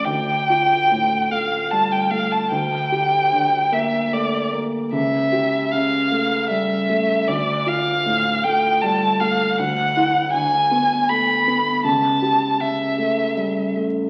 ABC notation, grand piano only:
X:1
M:3/4
L:1/8
Q:1/4=77
K:Dm
V:1 name="Grand piano"
D,, F A,, A, G, A, | D,, G D, B, A, B, | ^C,, G ^C, A, G, A, | D,, F A,, A, G, A, |
D,, E D, =B, A, B, | ^C,, G ^C, A, G, A, |]